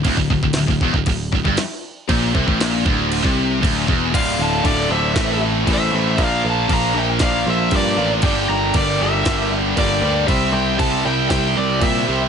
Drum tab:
CC |x---x---x---x---|x---x---x---x---|x---x---x---x---|x---x---x---x---|
SD |----o-------o---|----o-----------|--------o-------|--------o-------|
BD |oooo-oooo-oo----|o-oo--o--o--o-o-|o---o---o---o---|o---o---o---o---|

CC |x---x---x---x---|x---x---x---x---|
SD |--------o-------|--------o-------|
BD |o---o---o---o---|o---o---o---o---|